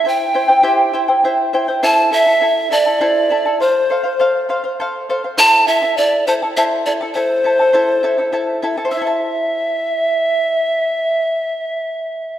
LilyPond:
<<
  \new Staff \with { instrumentName = "Pan flute" } { \time 6/8 \key a \minor \tempo 4. = 68 g''4. r4. | a''8 e''4 d''4. | c''4. r4. | a''8 e''8 d''8 c''8 e''8 d''8 |
c''2~ c''8 r8 | e''2.~ | e''2. | }
  \new Staff \with { instrumentName = "Charango" } { \time 6/8 \key a \minor <e' c'' e'' g''>8 <e' c'' e'' g''>16 <e' c'' g''>16 <e' g' c'' e'' g''>8 <e' c'' e'' g''>16 <e' c'' g''>16 <e' c'' e'' g''>8 <e' c'' e'' g''>16 <e' c'' g''>16 | <e' a' c'' e'' a''>8 <e' a' e'' a''>16 <e' a' a''>16 <e' a' e'' a''>8 <e' a' e'' a''>16 <e' a' a''>16 <e' a' c'' e'' a''>8 <e' a' e'' a''>16 <e' a' a''>16 | <a' c'' f''>8 <a' c'' f''>16 <c'' f''>16 <a' c'' f''>8 <a' c'' f''>16 <c'' f''>16 <a' c'' f''>8 <a' c'' f''>16 <c'' f''>16 | <e' a' c'' e'' a''>8 <e' a' e'' a''>16 <e' a' a''>16 <e' a' e'' a''>8 <e' a' e'' a''>16 <e' a' a''>16 <e' a' c'' e'' a''>8 <e' a' e'' a''>16 <e' a' a''>16 |
<e' a' e'' a''>8 <e' a' e'' a''>16 <e' a' a''>16 <e' a' c'' e'' a''>8 <e' a' e'' a''>16 <e' a' a''>16 <e' a' e'' a''>8 <e' a' e'' a''>16 <e' a' a''>16 | <e' a' c'' e'' a''>2.~ | <e' a' c'' e'' a''>2. | }
>>